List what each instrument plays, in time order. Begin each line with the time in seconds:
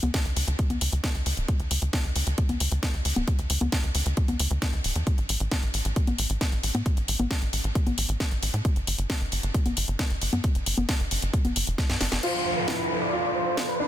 0.03 analog synth bass D2, closed hi-hat, high conga
0.14 kick, snare, closed hi-hat
0.25 analog synth bass D2, closed hi-hat
0.36 analog synth bass D2, open hi-hat
0.48 analog synth bass D2, closed hi-hat
0.59 kick, closed hi-hat
0.70 analog synth bass D2, closed hi-hat, high conga
0.81 analog synth bass D2, open hi-hat
0.93 analog synth bass D2, closed hi-hat
1.04 kick, snare, closed hi-hat
1.15 analog synth bass D2, closed hi-hat
1.26 analog synth bass D2, open hi-hat
1.37 analog synth bass D1, closed hi-hat
1.48 kick, closed hi-hat
1.60 analog synth bass D2, closed hi-hat
1.71 analog synth bass D2, open hi-hat
1.82 analog synth bass D2, closed hi-hat
1.93 kick, snare, closed hi-hat
2.04 analog synth bass D2, closed hi-hat
2.16 analog synth bass D2, open hi-hat
2.27 analog synth bass D2, closed hi-hat
2.38 kick, closed hi-hat
2.49 analog synth bass D2, closed hi-hat, high conga
2.60 analog synth bass D2, open hi-hat
2.72 analog synth bass D2, closed hi-hat
2.83 kick, snare, closed hi-hat
2.94 analog synth bass D2, closed hi-hat
3.05 analog synth bass D2, open hi-hat
3.16 analog synth bass D1, high conga
3.28 kick, closed hi-hat
3.39 analog synth bass D2, closed hi-hat
3.50 analog synth bass D2, open hi-hat
3.61 analog synth bass D2, closed hi-hat, high conga
3.72 kick, snare, closed hi-hat
3.83 analog synth bass D2, closed hi-hat
3.95 analog synth bass D2, open hi-hat
4.06 analog synth bass D2, closed hi-hat
4.17 kick, closed hi-hat
4.28 analog synth bass D2, closed hi-hat, high conga
4.39 analog synth bass D2, open hi-hat
4.51 analog synth bass D2
4.62 kick, snare, closed hi-hat
4.73 analog synth bass D2, closed hi-hat
4.84 analog synth bass D1, open hi-hat
4.96 analog synth bass E2, closed hi-hat
5.07 kick, closed hi-hat
5.18 analog synth bass A1, closed hi-hat
5.29 analog synth bass A1, open hi-hat
5.40 analog synth bass A1, closed hi-hat
5.52 kick, snare, closed hi-hat
5.63 analog synth bass A1, closed hi-hat
5.74 analog synth bass A1, open hi-hat
5.85 analog synth bass A1, closed hi-hat
5.96 kick, closed hi-hat
6.07 analog synth bass A1, closed hi-hat, high conga
6.18 analog synth bass A1, open hi-hat
6.30 analog synth bass A1, closed hi-hat
6.41 kick, snare, closed hi-hat
6.52 analog synth bass A1, closed hi-hat
6.63 analog synth bass A1, open hi-hat
6.75 analog synth bass A2, closed hi-hat, high conga
6.86 kick, closed hi-hat
6.97 analog synth bass A1, closed hi-hat
7.08 analog synth bass A1, open hi-hat
7.19 analog synth bass A1, closed hi-hat, high conga
7.31 kick, snare, closed hi-hat
7.42 analog synth bass A1, closed hi-hat
7.53 analog synth bass A1, open hi-hat
7.64 analog synth bass A1, closed hi-hat
7.75 kick, closed hi-hat
7.87 analog synth bass A1, closed hi-hat, high conga
7.98 analog synth bass A1, open hi-hat
8.09 analog synth bass A1, closed hi-hat
8.20 kick, snare, closed hi-hat
8.31 analog synth bass A1, closed hi-hat
8.42 analog synth bass A1, open hi-hat
8.54 analog synth bass A2, closed hi-hat
8.65 kick, closed hi-hat
8.76 analog synth bass G1, closed hi-hat
8.87 analog synth bass G1, open hi-hat
8.98 analog synth bass G1, closed hi-hat
9.10 kick, snare, closed hi-hat
9.21 analog synth bass G1, closed hi-hat
9.32 analog synth bass G1, open hi-hat
9.43 analog synth bass G1, closed hi-hat
9.54 kick, closed hi-hat
9.66 analog synth bass G1, closed hi-hat, high conga
9.77 analog synth bass G1, open hi-hat
9.88 analog synth bass G1, closed hi-hat
9.99 kick, snare, closed hi-hat
10.10 analog synth bass G1, closed hi-hat
10.21 analog synth bass G1, open hi-hat
10.33 analog synth bass G2, closed hi-hat, high conga
10.44 kick, closed hi-hat
10.55 analog synth bass G1, closed hi-hat
10.66 analog synth bass G1, open hi-hat
10.78 analog synth bass G1, closed hi-hat, high conga
10.89 kick, snare, closed hi-hat
11.00 analog synth bass G1, closed hi-hat
11.11 analog synth bass G1, open hi-hat
11.22 analog synth bass G1, closed hi-hat
11.34 kick, closed hi-hat
11.45 analog synth bass G1, closed hi-hat, high conga
11.56 analog synth bass G1, open hi-hat
11.67 analog synth bass F1, closed hi-hat
11.78 kick, snare, closed hi-hat
11.90 analog synth bass G2, snare, closed hi-hat
12.01 analog synth bass G1, snare, open hi-hat
12.12 analog synth bass G1, snare, closed hi-hat
12.23 felt piano F4, supersaw synth C5, crash, downlifter
12.56 supersaw synth B4
12.68 felt piano E4, snare
12.79 supersaw synth B4
13.01 supersaw synth D5
13.13 felt piano F4
13.35 supersaw synth C5
13.57 snare
13.69 supersaw synth B4
13.80 felt piano D4